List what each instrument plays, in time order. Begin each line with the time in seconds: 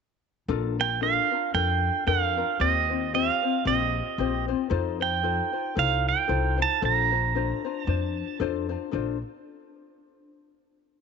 0.48 upright bass A#1, ukulele D4 F4 A4 A#4
0.79 ukulele D4 F4 A#4, pedal steel guitar G5
1.01 ukulele D4 F4 A4 A#4, pedal steel guitar F5
1.31 ukulele D4 F4 A#4
1.54 upright bass F2, ukulele D4 F4 A4 A#4, pedal steel guitar G5
2.06 upright bass F2, ukulele D4 F4 A4 A#4, pedal steel guitar F5
2.37 ukulele D4 F4 A#4
2.59 upright bass D#2, ukulele C4 F4 G4 C5, pedal steel guitar D#5
2.90 ukulele C4 F4 C5
3.13 ukulele C4 F4 G4 C5, pedal steel guitar F5
3.43 ukulele C4 F4 C5
3.65 upright bass A#1, ukulele C4 F4 G4 C5, pedal steel guitar D#5
4.18 upright bass A#1, ukulele C4 F4 G4 C5
4.48 ukulele C4 F4 C5
4.70 upright bass F2, ukulele D#4 F4 A4 C5
5.00 ukulele D#4 F4 C5, pedal steel guitar G5
5.23 ukulele D#4 F4 A4 C5
5.53 ukulele D#4 F4 C5
5.75 upright bass C2, ukulele D#4 F4 A4 C5, pedal steel guitar F5
6.09 pedal steel guitar G5
6.28 upright bass C2, ukulele D#4 F4 A4 C5
6.57 ukulele D#4 F4 C5
6.62 pedal steel guitar A5
6.82 upright bass A#1, ukulele D4 F4 A4 C5, pedal steel guitar A#5
7.11 ukulele D4 F4 C5
7.35 ukulele D4 F4 A4 C5
7.65 ukulele D4 F4 C5
7.83 upright bass F2, ukulele D4, pedal steel guitar A5
7.88 ukulele F4 C5
8.39 upright bass F2, ukulele D4 F4 A4 C5
8.69 ukulele D4 F4 C5
8.91 upright bass A#1, ukulele D4 F4 A4 C5